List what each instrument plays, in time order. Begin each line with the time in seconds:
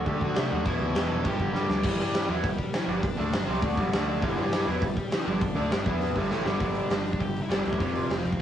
Already playing: distorted electric guitar D3 A3 D4
0.05 picked electric bass D2, overdriven electric guitar D3 A3 D4, lead electric guitar G4 G5, kick, crash
0.21 lead electric guitar F#4 F#5, kick
0.34 picked electric bass C3, overdriven electric guitar D3 A3 D4, lead electric guitar E5, snare, crash
0.38 lead electric guitar E4
0.51 picked electric bass D#2, lead electric guitar F#4 F#5
0.65 picked electric bass E1, overdriven electric guitar E2 B2 E3, lead electric guitar E4 E5, kick, crash
0.81 picked electric bass D2
0.94 picked electric bass E1, overdriven electric guitar E2 B2 E3, lead electric guitar G4 G5, snare, crash
1.09 picked electric bass E1, lead electric guitar A4 A5
1.23 picked electric bass G1, overdriven electric guitar G2 D3 G3, lead electric guitar G4 G5, kick, crash
1.40 picked electric bass G1, kick
1.54 picked electric bass G2, overdriven electric guitar G2 D3 G3, snare
1.69 picked electric bass D2, lead electric guitar D5, snare
1.74 lead electric guitar D4
1.83 picked electric bass G1, overdriven electric guitar G2 D3 G3, lead electric guitar E3 E4, kick, crash
1.98 picked electric bass G2, overdriven electric guitar G3 D4 G4
2.14 snare, open hi-hat
2.28 picked electric bass E2, overdriven electric guitar E3 B3 E4, lead electric guitar F#3 F#4
2.43 picked electric bass G1, overdriven electric guitar G2 D3, lead electric guitar G3 G4, kick, open hi-hat
2.59 kick
2.73 lead electric guitar E3 E4, snare, open hi-hat
2.87 picked electric bass G1, overdriven electric guitar G2 D3 G3, lead electric guitar D4 D5
3.02 picked electric bass G1, overdriven electric guitar G2 D3, kick, open hi-hat
3.18 picked electric bass D2, overdriven electric guitar D3 A3 D4
3.32 picked electric bass G1, overdriven electric guitar G2 D3, snare, open hi-hat
3.47 picked electric bass C2, overdriven electric guitar C3 G3 C4
3.62 picked electric bass D2, overdriven electric guitar D3 A3 D4, kick, open hi-hat
3.77 picked electric bass G1, overdriven electric guitar G2 D3 G3, kick
3.91 picked electric bass D2, overdriven electric guitar D3 A3 D4, snare, open hi-hat
4.09 lead electric guitar D4 D5
4.22 picked electric bass G1, overdriven electric guitar G2 D3 G3, lead electric guitar E3 E4, kick, open hi-hat
4.37 picked electric bass G2, overdriven electric guitar G3 D4 G4
4.52 snare, open hi-hat
4.68 picked electric bass E2, overdriven electric guitar E3 B3 E4, lead electric guitar F#3 F#4
4.82 picked electric bass G1, overdriven electric guitar G2 D3, lead electric guitar G3 G4, kick, open hi-hat
4.97 kick
5.11 lead electric guitar E3 E4, snare, open hi-hat
5.27 picked electric bass G1, overdriven electric guitar G2 D3 G3, lead electric guitar D4 D5
5.41 picked electric bass G1, overdriven electric guitar G2 D3, kick, open hi-hat
5.56 picked electric bass D2, overdriven electric guitar D3 A3 D4
5.71 picked electric bass G1, overdriven electric guitar G2 D3, snare, open hi-hat
5.86 picked electric bass E2, overdriven electric guitar E3 B3 E4, kick
6.01 open hi-hat
6.16 picked electric bass G1, overdriven electric guitar G2 D3 G3, kick
6.30 picked electric bass A1, overdriven electric guitar A2 E3 A3, snare
6.44 picked electric bass G1, overdriven electric guitar G2 D3 G3, lead electric guitar D4 D5, snare
6.60 picked electric bass G1, overdriven electric guitar G2 D3 G3, lead electric guitar D4 D5, kick, open hi-hat
6.75 open hi-hat
6.89 picked electric bass G1, overdriven electric guitar G2 D3, lead electric guitar D4 D5, snare, open hi-hat
7.06 open hi-hat
7.13 kick
7.19 picked electric bass G1, overdriven electric guitar G2 D3, lead electric guitar G4 G5, kick, open hi-hat
7.37 open hi-hat
7.42 lead electric guitar E4 E5
7.49 picked electric bass G1, overdriven electric guitar G2 D3 G3, lead electric guitar D4 D5, snare, open hi-hat
7.64 picked electric bass D2, distorted electric guitar G2 D3 G3, open hi-hat
7.70 lead electric guitar E4 E5, kick
7.78 picked electric bass F1, overdriven electric guitar F2 C3 F3, lead electric guitar F4 F5, kick, open hi-hat
7.96 open hi-hat
8.01 lead electric guitar D4 D5
8.08 picked electric bass F1, overdriven electric guitar F2 C3, lead electric guitar C4 C5, snare, open hi-hat
8.25 picked electric bass F1, open hi-hat
8.32 kick